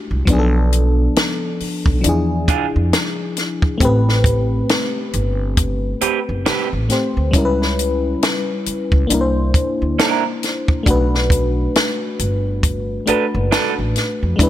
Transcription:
Already playing: A3 D4 F#4 G4
0.11 C2
0.25 B1 F3 B3, kick, closed hi-hat
0.30 D4 G#4
0.39 A4
0.73 closed hi-hat
1.16 snare, closed hi-hat
1.60 muted upright bass stroke, open hi-hat
1.86 B1, kick
2.01 E2 F3 D4, closed hi-hat
2.06 E4 G#4
2.48 D4 F4 G#4, kick, closed hi-hat
2.76 F2
2.93 snare, closed hi-hat
3.37 snare, closed hi-hat
3.62 kick
3.78 A1 A3 C4, kick, closed hi-hat
3.83 G4 B4
4.09 snare
4.24 kick, closed hi-hat
4.69 snare, closed hi-hat
5.13 G1, closed hi-hat
5.57 kick, closed hi-hat
6.01 C4 G4 B4, muted upright bass stroke, closed hi-hat
6.29 F#1
6.46 C4 G4 B4, muted upright bass stroke, snare, closed hi-hat
6.73 A1
6.89 A3 C4 G4 C5, snare, closed hi-hat
7.17 D2
7.31 C#2 G3 C#4, kick, closed hi-hat
7.36 E4 A#4
7.45 B4
7.62 snare
7.79 closed hi-hat
8.22 snare, closed hi-hat
8.66 muted upright bass stroke, closed hi-hat
8.92 C#2, kick
9.07 C2 A#3 D4, closed hi-hat
9.12 E4 A#4
9.21 C5
9.54 kick, closed hi-hat
9.82 D2
9.99 D4 E4 A#4, snare, closed hi-hat
10.43 snare, closed hi-hat
10.68 kick
10.83 B1 A3 D4, kick, closed hi-hat
10.88 F#4 B4
11.15 snare
11.30 kick, closed hi-hat
11.75 snare, closed hi-hat
12.19 G1, closed hi-hat
12.63 kick, closed hi-hat
13.06 A3 D4 F#4 A4 B4, muted upright bass stroke, closed hi-hat
13.35 F#1
13.52 D4 A4 B4, muted upright bass stroke, snare, closed hi-hat
13.79 A1
13.96 snare, closed hi-hat
14.23 F2
14.36 E2 G#3 D4, kick, closed hi-hat
14.41 E4 B4

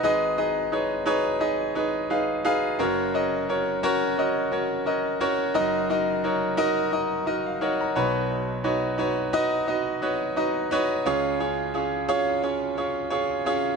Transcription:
0.03 G#1 G#2 D#4 G#4 B4 D#5
0.38 D#4 G#4 B4 D#5
0.72 D#4 G#4 B4 C#5
1.06 D#4 G#4 B4 C#5
1.40 D#4 G#4 B4 D#5
1.75 D#4 G#4 B4 C#5
2.10 D#4 G#4 B4 F5
2.45 D#4 G#4 B4 F5
2.79 F#1 F#2 C#4 F#4 A#4 C#5
3.14 C#4 F#4 A#4 D#5
3.49 C#4 F#4 A#4 C#5
3.83 C#4 F#4 A#4 C#5
4.18 C#4 F#4 A#4 D#5
4.52 C#4 F#4 A#4 C#5
4.86 C#4 F#4 A#4 D#5
5.20 C#4 F#4 A#4 C#5
5.54 F#1 F#2 D#4 F#4 A#4 D#5
5.90 D#4 F#4 A#4 D#5
6.24 D#4 F#4 A#4 C#5
6.57 D#4 F#4 A#4 D#5
6.92 D#4 F#4 A#4 D#5
7.26 D#4 F#4 A#4 D#5
7.46 F5
7.61 D#4 F#4 A#4 C#5 F#5
7.81 A#5
7.95 B1 B2 D#4 F#4 B4 C#5 B5
8.64 D#4 F#4 B4 C#5
8.98 D#4 F#4 B4 C#5
9.33 D#4 F#4 B4 D#5
9.67 D#4 F#4 B4 D#5
10.02 D#4 F#4 B4 C#5
10.36 D#4 F#4 B4 D#5
10.71 D#4 F#4 B4 C#5
11.06 C#2 C#3 C#4 F4 G#4 C#5
11.40 C#4 F4 G#4 C#5
11.74 C#4 F4 G#4 C#5
12.09 C#4 F4 G#4 C#5
12.43 C#4 F4 G#4 C#5
12.77 C#4 F4 G#4 C#5
13.10 C#4 F4 G#4 C#5
13.45 C#4 F4 G#4 C#5

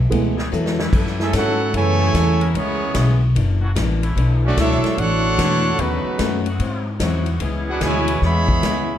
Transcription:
Already playing: B1
0.10 C#2 E3 F#3 G#3 A3 B3 E4 A4, kick, ride
0.37 E3 A3 B3 G#4, snare
0.52 E2 F#3 B3 E4 A4, hi-hat pedal
0.66 snare
0.78 F#2 E3 A3 B3 E4, snare
0.92 F#2 F#3 B3 E4 A4, kick, crash
1.07 snare
1.19 A3 C#4 E4 G#4 A4 E5, snare
1.33 G#2 F#3 B3 C#4 E4 F#4 A4 C#5 F#5, kick, snare, hi-hat pedal, ride
1.73 F#2 C#3 E3 F#3 A3 B3 E4 A4 C#5 G#5, kick, ride
1.99 E3 A3 B3 G#4
2.14 E2 F#3 B3 E4 A4, kick, snare, hi-hat pedal, ride
2.40 E3 B3 C#4 A#4, ride
2.54 C#2 C#3 E3 G#3 B3 C#4 E4 G#4 C#5, kick, ride
2.94 B1 C#3 G#3 B3 E4, kick, snare, hi-hat pedal, ride
3.35 F#1 F#2 E3 A#3 D4, kick, ride
3.61 E3 A#3 D4 F#4
3.75 A1 F#2 E3 A#3 D4, kick, snare, hi-hat pedal, ride
4.03 D3 A3 C#4 E4, ride
4.16 B1 B2 E3 A3 D4, kick, ride
4.44 F#3 A3 C#4 D4 F#4 D5
4.57 C#2 B2 E3 F#3 A3 D4 E4 C#5 E5, kick, snare, hi-hat pedal, ride
4.61 D4 A4
4.71 snare
4.83 muted upright bass stroke, snare, ride
4.97 A1 B2 E3 A3 D4 F#4 A4 C#5 F#5, kick, ride
5.37 E2 B2 D3 E3 A3 D4 E4 C#5, kick, snare, hi-hat pedal, ride
5.78 D#2 C#3 D#3 F#3 A3 B3 C#4 D#4 F#4 B4, kick, ride
6.04 muted upright bass stroke
6.18 F#2 D#3 A3 C#4 F#4, kick, snare, hi-hat pedal, ride
6.46 E3 G#3 C4 F#4, ride
6.58 G#2 F#3 C4 E4, kick, ride
6.99 E2 G#2 E3 F#3 G#3 C4 E4 F#4, kick, snare, hi-hat pedal, ride
7.26 ride
7.39 C#2 C#3 E3 G#3 B3 C#4 E4 G#4, kick, ride
7.68 D4 F#4 G#4 B4 F#5
7.80 D2 B2 C#3 E3 G#3 B3 E4 G#5, kick, snare, hi-hat pedal, ride
7.84 E4 B4 C#5
8.08 ride
8.22 E2 C#3 E3 G#3 B3 E4 G#4 C#5 E5 B5, kick, snare
8.48 kick
8.63 C#2 C#3 G#3 B3 E4, kick, snare, hi-hat pedal, ride

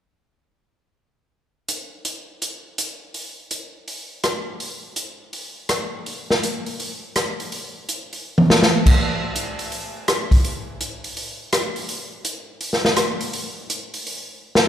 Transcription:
1.68 closed hi-hat
2.05 closed hi-hat
2.42 closed hi-hat
2.78 closed hi-hat
3.14 open hi-hat
3.51 closed hi-hat
3.88 open hi-hat
4.24 cross-stick, closed hi-hat
4.60 open hi-hat
4.96 closed hi-hat
5.33 open hi-hat
5.69 cross-stick, closed hi-hat
6.06 open hi-hat
6.30 snare
6.43 closed hi-hat
6.66 open hi-hat
6.80 open hi-hat
7.16 cross-stick, closed hi-hat
7.40 open hi-hat
7.52 open hi-hat
7.89 closed hi-hat
8.13 open hi-hat
8.38 high tom
8.50 snare
8.62 snare
8.86 kick, crash
9.36 closed hi-hat
9.59 open hi-hat
9.72 open hi-hat
10.08 cross-stick, closed hi-hat
10.31 kick, open hi-hat
10.45 open hi-hat
10.81 closed hi-hat
11.04 open hi-hat
11.17 open hi-hat
11.53 cross-stick, closed hi-hat
11.76 open hi-hat
11.89 open hi-hat
12.25 closed hi-hat
12.61 open hi-hat
12.73 snare
12.85 snare
12.96 cross-stick, closed hi-hat
13.21 open hi-hat
13.33 open hi-hat
13.70 closed hi-hat
13.94 open hi-hat
14.07 open hi-hat
14.55 snare

